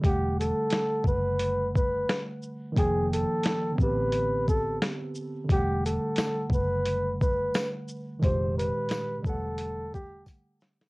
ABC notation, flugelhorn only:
X:1
M:4/4
L:1/16
Q:"Swing 16ths" 1/4=88
K:Em
V:1 name="Flugelhorn"
G2 A4 B4 B3 z3 | ^G2 A4 B4 A2 z4 | G2 A4 B4 B3 z3 | c2 B4 A4 G2 z4 |]